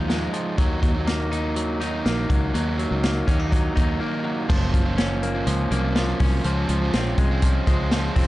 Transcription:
Already playing: fingered electric bass D#2, clean electric guitar F3 D#4
0.08 overdriven electric guitar F3 G#3 D#4 F4, clean electric guitar G#3, snare, closed hi-hat
0.33 clean electric guitar F3, closed hi-hat
0.58 fingered electric bass D#2, overdriven electric guitar D#3 A#3 D#4 F#4, clean electric guitar F#3, kick, closed hi-hat
0.82 fingered electric bass D#2, clean electric guitar F#3, kick, closed hi-hat
0.94 overdriven electric guitar A#3 D#4 F#4
1.07 clean electric guitar A#3, snare, closed hi-hat
1.31 overdriven electric guitar D#3 A#3 D#4 F#4, clean electric guitar D#4, closed hi-hat
1.56 clean electric guitar F#3, closed hi-hat
1.80 overdriven electric guitar D#3 A#3 D#4 F#4, clean electric guitar D#4, closed hi-hat
2.05 fingered electric bass A#1, overdriven electric guitar D#3 A#3 D#4 F#4, clean electric guitar A#3, snare, closed hi-hat
2.30 fingered electric bass C#2, clean electric guitar F#3, kick, closed hi-hat
2.54 fingered electric bass D#2, overdriven electric guitar D#3 A#3 D#4 F#4, clean electric guitar F#3, closed hi-hat
2.78 clean electric guitar F#3, closed hi-hat
2.90 fingered electric bass C#2, overdriven electric guitar A#3 D#4 F#4
3.03 clean electric guitar A#3, snare, closed hi-hat
3.27 fingered electric bass D#2, overdriven electric guitar D#3 A#3 D#4 F#4, clean electric guitar C#4, kick, closed hi-hat
3.40 clean electric guitar D#4
3.52 clean electric guitar F#3, kick, closed hi-hat
3.76 fingered electric bass D#2, overdriven electric guitar D#3 A#3 D#4 F#4, clean electric guitar D#4, kick, closed hi-hat
4.00 overdriven electric guitar D#3 A#3 D#4 F#4, clean electric guitar A#3
4.24 clean electric guitar F#3
4.49 fingered electric bass F#1, clean electric guitar F3, overdriven electric guitar F#3 A#3 C#4 F4, kick, crash
4.73 clean electric guitar F3, kick, closed hi-hat
4.85 overdriven electric guitar A#3 C#4 F4
4.98 clean electric guitar C#4, snare, closed hi-hat
5.23 clean electric guitar A#3, closed hi-hat
5.35 overdriven electric guitar A#3 C#4 F4
5.47 fingered electric bass C#2, clean electric guitar F3, closed hi-hat
5.71 fingered electric bass C2, overdriven electric guitar F#3 A#3 C#4 F4, clean electric guitar A#3, closed hi-hat
5.96 clean electric guitar F3, overdriven electric guitar F#3 A#3 C#4 F4, snare, closed hi-hat
6.20 fingered electric bass C2, overdriven electric guitar F#3 A#3 C#4 F4, clean electric guitar C#4, kick, open hi-hat
6.44 fingered electric bass C#2, overdriven electric guitar C#3 F3 G#3 C#4 F4 C5, clean electric guitar F3, closed hi-hat
6.69 fingered electric bass C#2, clean electric guitar F3, closed hi-hat
6.82 overdriven electric guitar G#3 C#4 F4 C5
6.93 fingered electric bass A#1, clean electric guitar C4, snare, closed hi-hat
7.18 fingered electric bass C2, clean electric guitar G#3, kick, closed hi-hat
7.31 overdriven electric guitar G#3 C#4 F4 C5
7.42 clean electric guitar F3, kick, closed hi-hat
7.67 fingered electric bass C#2, overdriven electric guitar G#3 C#4 F4 C5, clean electric guitar G#3, kick, closed hi-hat
7.91 clean electric guitar F3, overdriven electric guitar G#3 C#4 F4 C5, snare, closed hi-hat
8.15 fingered electric bass F1, overdriven electric guitar G#3 C#4 F4 C5, clean electric guitar C4, kick, open hi-hat

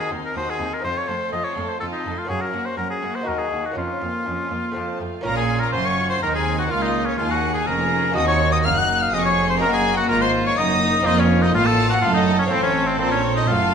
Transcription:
Already playing: lute C4 D#4, viola section D#4, violin section F#4 D#6
0.00 oboe G#4
0.10 cello section D#2, viola section C4, violin section D#4 C6
0.26 oboe A#4
0.35 lute D#2, cello section D#2, viola section D#4, violin section F#4 D#6, oboe C5
0.50 oboe G#4
0.59 cello section D#2, lute D#2, viola section C4, violin section D#4 C6
0.74 oboe A#4
0.79 lute A3 C4, viola section C4, violin section F4
0.84 cello section F2, lute F2, oboe C5, violin section A5
0.98 oboe C#5
1.08 cello section F2, lute F2, viola section A3, violin section A4 C6, oboe C5
1.32 cello section F2, lute F2, viola section C4, violin section F4 A5, oboe D#5
1.44 oboe C#5
1.56 cello section F2, lute F2, viola section A3, violin section A4 C6
1.69 oboe C5
1.80 cello section F2, lute F2, viola section C4, violin section F4 A5, oboe A4
1.92 oboe D#4
2.05 cello section F2, lute F2, viola section A3, violin section A4 C6
2.19 oboe F4
2.25 lute A#3 C#4 F#4, violin section C#4
2.29 cello section F#2, lute F#2, viola section F#3, oboe G#4, violin section A#5
2.41 oboe A#4
2.52 cello section F#2, lute F#2, viola section A#3, violin section F#4 F#5
2.66 oboe C5
2.77 lute F#2, cello section F#2, viola section F#3, violin section C#4 A#5, oboe A#4
2.90 oboe G#4
3.01 cello section F#2, lute F#2, viola section A#3, violin section F#4 F#5
3.16 oboe C5
3.21 lute A#3 D#4 F#4
3.26 lute D#2, cello section D#2, viola section F#3, violin section D#4 D#5, oboe A#4
3.38 oboe G#4
3.51 lute D#2, cello section D#2, viola section A#3, violin section F#4 F#5
3.66 oboe F#4
3.72 lute A#3 C#4 F4, violin section C#4
3.76 cello section F2, lute F2, viola section F3, oboe F4, violin section C#5
4.00 lute F2, cello section F2, viola section A#3, violin section F4 F5
4.26 lute F2, cello section F2, viola section F3, violin section C#4 C#5
4.50 lute F2, cello section F2, viola section A#3, violin section F4 F5
4.71 lute A3 C4 F4
4.76 cello section F2, lute F2, viola section F3, violin section C4 A5
5.01 lute F2, cello section F2, viola section A3, violin section F4 F5
5.21 double bass section A#1, cello section A#2, lute A#3 C#4 F4, violin section A#5
5.25 lute A#2, viola section C#4, violin section F4, oboe A#4
5.36 oboe G#4, violin section G#5
5.60 oboe A#4, violin section A#5
5.72 double bass section F#1, cello section F#2, lute F#2, oboe C5, violin section C6
5.86 oboe C#5, violin section C#6
6.10 oboe C5, violin section C6
6.22 cello section D#2, lute D#2, double bass section D#2, viola section C4, violin section D#4 A#5, oboe A#4
6.34 oboe G#4, violin section G#5
6.59 oboe F#4, violin section F#5
6.67 lute A#3 F4, viola section A#3, oboe F4
6.71 cello section C#2, double bass section C#2, violin section F4 F5
6.82 oboe D#4, violin section D#5
7.05 oboe C#4, violin section C#5
7.18 lute D#2, double bass section D#2, cello section D#2, viola section A#3, oboe F4, violin section G#4 F5
7.30 oboe F#4, violin section F#5
7.54 oboe G#4, violin section G#5
7.67 double bass section F1, lute F2, cello section F2, viola section C#4, oboe A#4, violin section A#5
7.92 viola section C#4
8.11 lute A#3 D#4 F#4
8.15 lute D#2, cello section D#2, double bass section D#2, viola section C4, violin section F#4 D#6, oboe D#5
8.28 oboe C#5, violin section C#6
8.52 oboe D#5, violin section D#6
8.63 double bass section F#1, lute F#2, cello section F#2, viola section A#3, violin section D#4 F6, oboe F5
8.76 oboe F#5, violin section F#6
9.01 oboe F5, violin section F6
9.12 double bass section F1, lute F2, cello section F2, viola section C4, violin section G#4 D#6, oboe D#5
9.24 oboe C#5, violin section C#6
9.49 oboe C5, violin section C6
9.58 lute A#3 D#4 A#4, violin section F#4 A#5
9.62 double bass section F#1, lute F#2, cello section F#2, viola section A#3, oboe A#4
9.72 oboe G#4, violin section G#5
9.97 oboe F#4, violin section F#5
10.09 double bass section G#1, cello section G#2, lute G#2, violin section F4 A#5, oboe A#4
10.21 oboe C5, violin section C6
10.46 oboe C#5, violin section C#6
10.58 double bass section F#1, cello section F#2, lute F#2, viola section A#3, violin section D#4 D#6, oboe D#5
10.81 violin section D#4
11.03 lute C4 F4, oboe D#4, violin section F4 D#5
11.07 double bass section F1, lute F2, cello section F2
11.19 oboe C#4, violin section C#5
11.42 oboe D#4, violin section D#5
11.54 double bass section A1, lute A2, cello section A2, violin section F4 F5, oboe F4
11.65 oboe A4, violin section A5
11.89 oboe F#4, violin section F#5
12.01 double bass section F#1, lute F#2, cello section F#2, viola section A3, oboe F4, violin section A4 F5
12.14 oboe D#4, violin section D#5
12.39 oboe C#4, violin section C#5
12.46 lute C4 F4
12.50 double bass section A1, lute A2, cello section A2, oboe C4, viola section C4, violin section A4 C5
12.63 oboe C#4, violin section C#5
12.87 oboe C4, violin section C5
12.98 double bass section A#1, lute A#2, cello section A#2, oboe C4, viola section C4, violin section C5
13.12 oboe C#4, violin section C#5
13.36 oboe D#4, violin section D#5
13.48 double bass section F#1, lute F#2, cello section F#2, viola section A3, oboe F4, violin section A4 F5

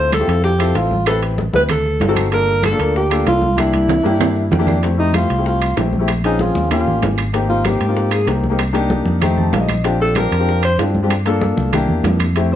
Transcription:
Already playing: fingered electric bass D2, alto saxophone C5
0.12 alto saxophone A4, high bongo, high conga, high timbale, claves
0.19 grand piano C4 E4 F4 G4
0.26 fingered electric bass F2, grand piano C4 E4 F4 A4, high conga, high timbale
0.44 alto saxophone G4, high bongo, high conga
0.58 grand piano C4 E4 F4 A4, high bongo, high conga, high timbale, claves
0.75 fingered electric bass A1, alto saxophone F4, high bongo, low bongo, high conga, high timbale
0.91 high bongo, high conga
1.06 grand piano C4 E4 G4 B4, alto saxophone A4, high bongo, high conga, high timbale, claves
1.23 high bongo, high conga, high timbale
1.38 high bongo, high conga
1.53 fingered electric bass D2, grand piano C4 E4 G4 B4, alto saxophone B4, high conga
1.69 alto saxophone A4, high bongo, high conga, low conga, high timbale, claves
1.85 high bongo, high conga
2.00 fingered electric bass G1, high bongo, low bongo, high conga, high timbale, low timbale
2.08 grand piano C4 D#4 F#4 A4
2.16 high bongo, high conga, high timbale, claves
2.31 grand piano A#3 D4 F4 A4, alto saxophone A#4, high bongo, high conga, high timbale
2.48 high bongo, high conga
2.63 alto saxophone A4, high bongo, high conga, high timbale, claves
2.71 grand piano A#3 D4 F4 A4
2.79 fingered electric bass D2, grand piano A#3 D4 F4 A#4, high conga, high timbale
2.95 alto saxophone G4, high bongo, high conga
3.10 grand piano A#3 D4 F4 A4, high conga, high timbale, claves
3.27 fingered electric bass C2, alto saxophone F4, high bongo, low bongo, high conga, high timbale, low timbale
3.42 high bongo, high conga
3.56 grand piano A#3 D4 E4 G4, alto saxophone E4, high bongo, high conga, high timbale, claves
3.73 high bongo, high conga, high timbale
3.88 high bongo, low conga, high timbale
4.03 fingered electric bass G2, grand piano A#3 D4 E4 G4, low timbale
4.20 high bongo, low conga, high timbale, claves
4.37 high bongo
4.51 fingered electric bass F2, grand piano G5, high bongo, low bongo, low conga, low timbale
4.59 grand piano A#3 D4 E4 G4
4.67 grand piano D5, high bongo, low conga, low timbale, claves
4.82 grand piano A3 C4 E4 G4, high bongo, high conga, high timbale
4.98 grand piano A3 C4 E4 G4, alto saxophone D#4, high bongo, high conga
5.14 grand piano A3 C4 E4 G4, alto saxophone F4, high bongo, high conga, high timbale, claves
5.30 fingered electric bass C2, high conga, high timbale
5.38 grand piano A3 C4 E4 G4
5.46 alto saxophone F4, high bongo, high conga
5.61 high bongo, high conga, high timbale, claves
5.76 fingered electric bass A#1, grand piano A3 C4 E4 G4, high bongo, low bongo, high conga, high timbale, low timbale
5.93 high bongo, high conga
5.99 grand piano A3 C4 E4 G4
6.08 high bongo, high timbale, claves
6.24 grand piano C4 C#4 F4 G#4, alto saxophone D#4, high bongo, high conga, high timbale
6.39 alto saxophone F4, high bongo, high conga
6.55 fingered electric bass D#2, high conga
6.70 grand piano A#3 C#4 F4 G4, alto saxophone F4, high bongo, high conga, low conga, high timbale, claves
6.86 fingered electric bass A1, high bongo, high conga, low conga
7.02 fingered electric bass G#1, high bongo, low bongo, high conga, high timbale, low timbale
7.18 high bongo, high timbale, claves
7.33 grand piano A#3 C4 D#4 G4, high bongo, high timbale
7.48 grand piano A#3 C4 D#4 G4, alto saxophone F4, high bongo, high conga
7.65 grand piano A#3 C4 D#4 G4, alto saxophone G4, high bongo, high conga, high timbale, claves
7.80 fingered electric bass G#2, high conga, high timbale
7.87 grand piano A#3 C4 D#4 F4
7.96 high bongo, high conga
8.11 alto saxophone G#4, high bongo, high conga, high timbale, claves
8.26 fingered electric bass C2, grand piano A#3 C4 D#4 G4, high bongo, low bongo, high conga, high timbale
8.43 high bongo, high conga
8.50 grand piano A#3 C4 D#4 G4
8.59 high bongo, high timbale, claves
8.73 grand piano A#3 D4 D#4 G4, high bongo, high conga, high timbale
8.90 high bongo, high conga
9.05 fingered electric bass F2, high conga
9.21 grand piano A3 C4 D#4 G4, high bongo, high conga, low conga, high timbale, claves
9.37 grand piano A5, high bongo, high conga, low conga
9.53 fingered electric bass A#1, grand piano F5, high bongo, low bongo, high conga, high timbale, low timbale
9.61 grand piano D#5
9.69 high bongo, high conga, high timbale, claves
9.84 grand piano C4 D4 F4 G4, high bongo, high conga, high timbale
10.00 grand piano C4 D4 F4 G4, alto saxophone A4, high bongo, high conga
10.15 grand piano C4 D4 F4 G4, alto saxophone A#4, high bongo, high conga, high timbale, claves
10.32 fingered electric bass F2, high conga, high timbale
10.38 grand piano C4 D4 F4 G4
10.48 high bongo, high conga
10.63 alto saxophone C5, high bongo, high timbale, claves
10.78 fingered electric bass G2, grand piano C4 D4 F4 G4, high bongo, low bongo, high timbale, low timbale
10.95 high bongo, high conga
11.03 grand piano C4 D4 F4 G4
11.10 high bongo, high conga, high timbale, claves
11.25 grand piano A#3 D4 F4 A4, high bongo, high conga, high timbale
11.41 high bongo, high conga
11.57 fingered electric bass C2, high conga
11.73 grand piano A#3 D4 E4 G4, high bongo, high conga, low conga, high timbale, claves
11.88 fingered electric bass E2, high bongo, high conga, low conga
12.04 fingered electric bass F2, high bongo, low bongo, high conga, high timbale, low timbale
12.19 high bongo, high conga, high timbale, claves
12.35 grand piano A3 C4 E4 G4, high bongo, high conga, high timbale
12.51 grand piano A3 C4 E4, high conga

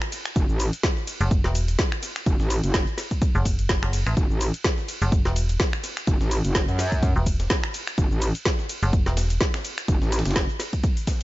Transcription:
0.02 finger snap, shaker
0.12 closed hi-hat, open hi-hat, ride, shaker
0.26 finger snap, closed hi-hat, shaker
0.36 wobble bass F#1, kick, closed hi-hat, shaker
0.49 wobble bass A1, shaker
0.60 closed hi-hat, open hi-hat, ride, shaker
0.73 closed hi-hat, shaker
0.83 kick, snare, closed hi-hat, shaker
0.97 snare, shaker
1.07 closed hi-hat, open hi-hat, ride, shaker
1.21 fm bass F#1, closed hi-hat, shaker
1.31 kick, closed hi-hat, shaker
1.44 fm bass E1, snare, closed hi-hat, shaker
1.55 closed hi-hat, open hi-hat, ride, shaker
1.68 closed hi-hat, shaker
1.79 kick, snare, closed hi-hat, shaker
1.92 finger snap, closed hi-hat, shaker
2.03 snare, closed hi-hat, open hi-hat, ride, shaker
2.16 finger snap, closed hi-hat, shaker
2.26 wobble bass F#1, kick, closed hi-hat, shaker
2.40 wobble bass A1, snare, shaker
2.50 closed hi-hat, open hi-hat, ride, shaker
2.63 wobble bass F#1, closed hi-hat, shaker
2.74 kick, snare, closed hi-hat, shaker
2.87 closed hi-hat, shaker
2.98 snare, closed hi-hat, open hi-hat, ride, shaker
3.11 kick, closed hi-hat, shaker
3.22 kick, closed hi-hat, shaker
3.35 fm bass F#1, shaker
3.45 kick, closed hi-hat, open hi-hat, ride, shaker
3.59 closed hi-hat, shaker
3.69 kick, snare, closed hi-hat, shaker
3.83 fm bass F#1, finger snap, shaker
3.93 closed hi-hat, open hi-hat, ride, shaker
4.06 fm bass A1, finger snap, closed hi-hat, shaker
4.17 wobble bass F#1, kick, closed hi-hat, shaker
4.30 wobble bass A1, shaker
4.41 closed hi-hat, open hi-hat, ride, shaker
4.54 closed hi-hat, shaker
4.64 kick, snare, closed hi-hat, shaker
4.78 snare, shaker
4.88 closed hi-hat, open hi-hat, ride, shaker
5.02 fm bass F#1, closed hi-hat, shaker
5.12 kick, closed hi-hat, shaker
5.25 fm bass E1, snare, closed hi-hat, shaker
5.36 closed hi-hat, open hi-hat, ride, shaker
5.49 closed hi-hat, shaker
5.60 kick, snare, closed hi-hat, shaker
5.73 finger snap, closed hi-hat, shaker
5.84 snare, closed hi-hat, open hi-hat, ride, shaker
5.97 finger snap, closed hi-hat, shaker
6.07 wobble bass F#1, kick, closed hi-hat, shaker
6.21 wobble bass A1, snare, shaker
6.31 closed hi-hat, open hi-hat, ride, shaker
6.44 wobble bass F#1, closed hi-hat, shaker
6.55 kick, snare, closed hi-hat, shaker
6.68 wobble bass F#2, closed hi-hat, shaker
6.79 snare, closed hi-hat, open hi-hat, ride, shaker
6.92 kick, closed hi-hat, shaker
7.03 kick, closed hi-hat, shaker
7.16 fm bass E1, shaker
7.26 kick, closed hi-hat, open hi-hat, ride, shaker
7.40 snare, closed hi-hat, shaker
7.50 kick, snare, closed hi-hat, shaker
7.64 finger snap, shaker
7.74 closed hi-hat, open hi-hat, ride, shaker
7.87 finger snap, closed hi-hat, shaker
7.98 wobble bass F#1, kick, closed hi-hat, shaker
8.11 wobble bass A1, shaker
8.22 closed hi-hat, open hi-hat, ride, shaker
8.35 closed hi-hat, shaker
8.45 kick, snare, closed hi-hat, shaker
8.59 snare, shaker
8.69 closed hi-hat, open hi-hat, ride, shaker
8.83 fm bass F#1, closed hi-hat, shaker
8.93 kick, closed hi-hat, shaker
9.06 fm bass E1, snare, closed hi-hat, shaker
9.17 snare, closed hi-hat, open hi-hat, ride, shaker
9.30 closed hi-hat, shaker
9.41 kick, snare, closed hi-hat, shaker
9.54 finger snap, snare, closed hi-hat, shaker
9.65 closed hi-hat, open hi-hat, ride, shaker
9.78 finger snap, closed hi-hat, shaker
9.88 wobble bass F#1, kick, closed hi-hat, shaker
10.02 wobble bass A1, snare, shaker
10.12 snare, closed hi-hat, open hi-hat, ride, shaker
10.19 snare, closed hi-hat
10.26 wobble bass F#1, snare, closed hi-hat, shaker
10.31 snare, closed hi-hat
10.36 kick, snare, closed hi-hat, shaker
10.49 closed hi-hat, shaker
10.60 snare, closed hi-hat, open hi-hat, ride, shaker
10.73 kick, closed hi-hat, shaker
10.84 kick, closed hi-hat, shaker
10.97 open hi-hat, shaker
11.07 kick, snare, closed hi-hat, open hi-hat, ride, shaker

